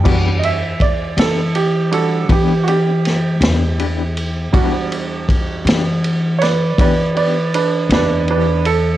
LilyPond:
<<
  \new Staff \with { instrumentName = "Upright piano" } { \time 12/8 \key e \minor \tempo 4. = 54 << { r8 <dis'' e''>8 d''8 a'8 g'8 a'8 g'8 <fis' g'>2~ <fis' g'>8~ | <fis' g'>8 r2 <b' cis'' d''>8 <b' d''>8 <b' d''>8 <d' b'>8 <d' b'>8 <d' b'>8 a'8 | } \\ { <g d' fis'>8 r2 <g d' fis'>8 r2. | <g d' fis'>1. | } >> }
  \new Staff \with { instrumentName = "Clean electric guitar" } { \time 12/8 \key e \minor <e b d' g'>8 r4 <b d' g'>8 r4 <e b d' g'>8 <b d' g'>8 r8 <b d' g'>8 <e b d' g'>8 r8 | <e b d' g'>8 r4 <b d' g'>8 r4 <e b d' g'>8 <b d' g'>8 r8 <b d' g'>8 <e b d' g'>8 r8 | }
  \new Staff \with { instrumentName = "Upright bass" } { \clef bass \time 12/8 \key e \minor e,4. e4. e4. e,4. | e,4. e4. e4. e,4. | }
  \new DrumStaff \with { instrumentName = "Drums" } \drummode { \time 12/8 <cymc bd>8 cymr8 <bd cymr>8 <cymr sn>8 cymr8 cymr8 <bd cymr>8 cymr8 <cymr sn>8 <cymr sn>8 cymr8 cymr8 | <bd cymr>8 cymr8 <bd cymr>8 <cymr sn>8 cymr8 <cymr sn>8 <bd cymr>8 cymr8 cymr8 <cymr sn>8 cymr8 cymr8 | }
>>